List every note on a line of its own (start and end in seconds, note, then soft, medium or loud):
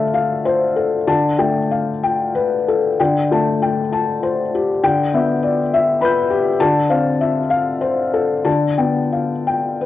0.00 1.03 D3 medium
0.00 1.09 A3 soft
0.00 0.13 E5 soft
0.00 0.14 F5 soft
0.00 1.07 A5 medium
0.14 0.63 F5 soft
0.45 0.95 C5 soft
0.76 1.07 A4 soft
1.07 2.95 D3 soft
1.07 1.58 A5 medium
1.38 1.89 A3 soft
1.38 1.89 G5 soft
1.71 2.03 F5 soft
2.03 2.55 G5 soft
2.35 2.87 B4 soft
2.68 3.00 A4 soft
3.00 4.79 D3 soft
3.00 3.49 G5 soft
3.31 3.80 A3 soft
3.31 3.81 A5 soft
3.62 3.93 G5 soft
3.93 4.41 A5 soft
4.23 4.71 C5 soft
4.55 4.84 G4 soft
4.83 6.56 D3 soft
4.83 5.30 G5 medium
5.14 5.60 B3 soft
5.14 5.60 E5 soft
5.42 5.71 D5 soft
5.73 6.19 E5 medium
6.01 6.48 B4 medium
6.01 6.56 B5 soft
6.01 6.58 G6 soft
6.30 6.60 G4 soft
6.60 8.42 D3 medium
6.60 7.08 A5 medium
6.89 7.38 C4 soft
6.89 7.39 F5 soft
7.21 7.51 E5 soft
7.50 8.00 F5 soft
7.81 8.32 C5 soft
8.14 8.46 A4 soft
8.45 9.86 D3 soft
8.45 8.98 A5 soft
8.78 9.32 B3 soft
8.78 9.32 G5 soft
9.13 9.46 F5 soft
9.47 9.86 G5 soft
9.81 9.86 B4 soft